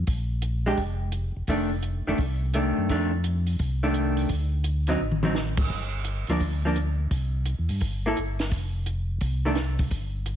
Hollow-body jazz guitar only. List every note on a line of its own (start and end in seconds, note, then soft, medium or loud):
0.66 0.77 G#3 medium
0.66 0.78 D4 medium
0.66 0.78 G4 medium
1.49 1.69 D#3 medium
1.49 1.70 A3 medium
1.49 1.70 D4 medium
2.07 2.18 D#3 medium
2.07 2.19 A3 medium
2.07 2.19 D4 medium
2.54 2.89 D#3 medium
2.54 2.90 A3 medium
2.54 2.90 D4 medium
2.90 3.10 D#3 medium
2.90 3.11 A3 medium
2.90 3.11 D4 medium
3.83 4.28 D#3 medium
3.83 4.28 A3 medium
3.83 4.28 D4 medium
4.88 4.99 D3 medium
4.88 4.99 F#3 medium
4.88 5.00 C4 medium
4.88 5.00 D#4 medium
5.23 5.34 D3 medium
5.23 5.35 F#3 medium
5.23 5.35 C4 medium
5.23 5.35 D#4 medium
6.30 6.40 F3 medium
6.30 6.41 A#3 medium
6.30 6.41 D4 medium
6.65 6.76 F3 medium
6.65 6.76 A#3 medium
6.65 6.76 D4 medium
8.06 8.16 A#3 medium
8.06 8.17 E4 medium
8.06 8.17 A4 medium
9.45 9.56 D#3 medium
9.45 9.56 A3 medium
9.45 9.57 D4 medium